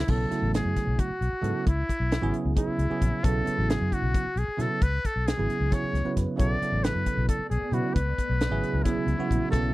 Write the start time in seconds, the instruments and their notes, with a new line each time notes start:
Already playing: muted trumpet E4
0.07 fingered electric bass B1, tine electric piano C#3 F#3 B3 E4 A4, muted trumpet A4, kick, crash
0.29 tine electric piano C#3 F#3 A3 B3 E4, muted fingered electric bass stroke, snare, closed hi-hat
0.42 fingered electric bass A1
0.54 muted trumpet G#4, snare, closed hi-hat
0.65 fingered electric bass F#2
0.76 kick, snare, closed hi-hat
0.87 fingered electric bass B1
0.99 muted trumpet F#4, kick, closed hi-hat
1.10 muted fingered electric bass stroke
1.21 fingered electric bass B1, closed hi-hat
1.33 muted fingered electric bass stroke
1.41 fingered electric bass G#2, tine electric piano C#3 F#3 B3 E4 A4, closed hi-hat
1.67 fingered electric bass C#2, muted trumpet E4, kick, closed hi-hat
1.89 muted fingered electric bass stroke, kick, closed hi-hat
2.00 fingered electric bass B1
2.11 snare, closed hi-hat
2.21 fingered electric bass G#1, tine electric piano C#3 F#3 B3 E4 G#4
2.34 closed hi-hat
2.45 fingered electric bass C#2
2.55 tine electric piano C#3 F#3 B3 E4 G#4, muted trumpet E4, kick, closed hi-hat
2.68 muted fingered electric bass stroke
2.78 fingered electric bass C#2, closed hi-hat
2.90 tine electric piano C#3 F#3 B3 E4 G#4, muted fingered electric bass stroke
3.02 fingered electric bass A#1, kick, closed hi-hat
3.23 fingered electric bass B1, tine electric piano C#3 F#3 B3 E4 A4, muted trumpet A4, kick, closed hi-hat
3.45 tine electric piano C#3 F#3 B3 E4 F#4, muted fingered electric bass stroke, closed hi-hat
3.58 fingered electric bass A1
3.69 muted trumpet G#4, snare, closed hi-hat
3.81 fingered electric bass F#2
3.92 muted trumpet F#4, kick, closed hi-hat
4.02 fingered electric bass B1
4.14 kick, closed hi-hat
4.26 muted fingered electric bass stroke
4.36 fingered electric bass B1, muted trumpet G#4, closed hi-hat
4.57 fingered electric bass B2, tine electric piano C#3 F#3 B3 E4 A4, muted trumpet A4, snare, closed hi-hat
4.81 fingered electric bass C#2, muted trumpet B4, kick, closed hi-hat
5.04 muted trumpet A4, muted fingered electric bass stroke, kick, closed hi-hat
5.16 fingered electric bass B1
5.27 muted trumpet G#4, snare, closed hi-hat
5.37 fingered electric bass G#1, tine electric piano C#3 F#3 B3 E4 G#4
5.50 closed hi-hat
5.60 fingered electric bass C#2
5.71 tine electric piano C#3 F#3 B3 E4 G#4, muted trumpet C#5, kick, snare, closed hi-hat
5.84 muted fingered electric bass stroke
5.93 fingered electric bass C#2, snare, closed hi-hat
6.04 tine electric piano C#3 F#3 B3 E4 B4
6.17 fingered electric bass F#2, kick, snare, closed hi-hat
6.36 fingered electric bass B1, ambient pad B2, tine electric piano C#3 F#3 B3 E4 A4, muted trumpet D5, kick, closed hi-hat
6.61 tine electric piano C#3 F#3 B3 E4 A4, muted fingered electric bass stroke, closed hi-hat
6.72 fingered electric bass A1
6.84 muted trumpet B4, snare, closed hi-hat
6.95 fingered electric bass F#2
7.06 muted fingered electric bass stroke, kick, closed hi-hat
7.17 fingered electric bass B1
7.29 muted trumpet A4, kick, closed hi-hat
7.39 muted fingered electric bass stroke
7.50 fingered electric bass B1, muted trumpet G#4, closed hi-hat
7.71 fingered electric bass B2, tine electric piano C#3 F#3 B3 E4 B4, muted trumpet F#4, closed hi-hat
7.94 fingered electric bass C#2, ambient pad B3, muted trumpet B4, kick, closed hi-hat
8.18 muted fingered electric bass stroke, kick, closed hi-hat
8.30 fingered electric bass B1
8.40 snare, closed hi-hat
8.50 fingered electric bass G#1, tine electric piano C#3 F#3 B3 E4 G#4
8.63 closed hi-hat
8.73 fingered electric bass C#2
8.83 tine electric piano C#3 F#3 B3 E4 G#4, muted trumpet E4, kick, snare, closed hi-hat
8.96 muted fingered electric bass stroke
9.07 fingered electric bass C#2, closed hi-hat
9.18 tine electric piano C#3 F#3 B3 E4 F#4
9.31 fingered electric bass A#1, kick, closed hi-hat
9.51 fingered electric bass B1, tine electric piano C#3 F#3 B3 E4 A4, muted trumpet A4, kick, closed hi-hat